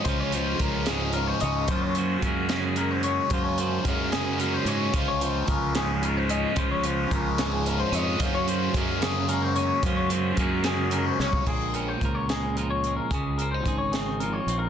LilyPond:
<<
  \new Staff \with { instrumentName = "Clean electric guitar" } { \time 6/8 \key des \major \tempo 4. = 74 c''16 des''16 c''8 bes'8 aes'8 bes'16 c''16 ees''8 | c''16 des''16 c''8 bes'8 aes'8 bes'16 c''16 des''8 | c''16 des''16 c''8 bes'8 aes'8 bes'16 c''16 des''8 | c''16 des''16 c''8 bes'8 aes'8 bes'16 c''16 ees''8 |
c''16 des''16 c''8 bes'8 aes'8 bes'16 c''16 ees''8 | c''16 des''16 c''8 bes'8 aes'8 bes'16 c''16 des''8 | c''16 des''16 c''8 bes'8 aes'8 bes'16 c''16 des''8 | aes'8 bes'16 c''8 des''16 aes'8 bes'16 des''8 bes'16 |
aes'8 bes'16 c''8 des''16 aes'8 bes'16 des''8 bes'16 | }
  \new Staff \with { instrumentName = "Clean electric guitar" } { \clef bass \time 6/8 \key des \major << { f'2~ f'8 des'8 | f'4 aes4 aes8 des'8 | f'4 aes4 aes8 des'8 | f'2~ f'8 des'8 |
f'2~ f'8 des'8 | f'4 aes4 aes8 des'8 | f'4 aes4 aes8 des'8 | r8 des'8 bes'8 aes4 aes8~ |
aes8 c'16 ees'16 aes'8 c'4 c'8 | } \\ { des8 f4 aes,4. | ges,8 ges4 des4. | ges,8 ges4 des4. | des8 f4 aes,4. |
des8 f4 aes,4. | ges,8 ges4 des4. | ges,8 ges4 des4. | bes,2 f4 |
des2 f4 | } >> }
  \new Staff \with { instrumentName = "Overdriven electric guitar" } { \clef bass \time 6/8 \key des \major <des f aes des'>8 <f aes des'>8 <des f aes des'>8 <f aes des'>8 <des f aes des'>8 <f aes des'>8 | <ges, des ges bes des'>8 <ges bes des'>8 <des ges bes des'>8 <ges bes des'>8 <des ges bes des'>8 <ges bes des'>8 | <ges, des ges bes des'>8 <ges bes des'>8 <des ges bes des'>8 <ges bes des'>8 <des ges bes des'>8 <ges bes des'>8 | <des f aes des'>8 <f aes des'>8 <des f aes des'>8 <f aes des'>8 <des f aes des'>8 <f aes des'>8 |
<des f aes des'>8 <f aes des'>8 <des f aes des'>8 <f aes des'>8 <des f aes des'>8 <f aes des'>8 | <ges, des ges bes des'>8 <ges bes des'>8 <des ges bes des'>8 <ges bes des'>8 <des ges bes des'>8 <ges bes des'>8 | <ges, des ges bes des'>8 <ges bes des'>8 <des ges bes des'>8 <ges bes des'>8 <des ges bes des'>8 <ges bes des'>8 | r2. |
r2. | }
  \new Staff \with { instrumentName = "Fingered electric bass" } { \clef bass \time 6/8 \key des \major des,4 des,4. des,8 | ges,4 ges,2 | ges,4 ges,4. aes,8 | des,4 des,2 |
des,4 des,4. f,8 | ges,4 ges,2 | ges,4 ges,4. c,8 | bes,,4 des,2 |
des,4 aes,,4. bes,,8 | }
  \new DrumStaff \with { instrumentName = "Drums" } \drummode { \time 6/8 <hh bd>8 hh8 <hh bd>8 <hh sn>8 hh8 hh8 | <hh bd>8 hh8 <hh bd>8 <hh sn>8 hh8 hh8 | <hh bd>8 hh8 <hh bd>8 <hh sn>8 hh8 hh8 | <hh bd>8 hh8 <hh bd>8 <hh sn>8 hh8 hh8 |
<hh bd>8 hh8 <hh bd>8 <hh sn>8 hh8 hh8 | <hh bd>8 hh8 <hh bd>8 <hh sn>8 hh8 hh8 | <hh bd>8 hh8 <hh bd>8 <hh sn>8 hh8 sn16 bd16 | <cymc bd>8 hh8 <hh bd>8 <hh sn>8 hh8 hh8 |
<hh bd>8 hh8 <hh bd>8 <hh sn>8 hh8 hh8 | }
>>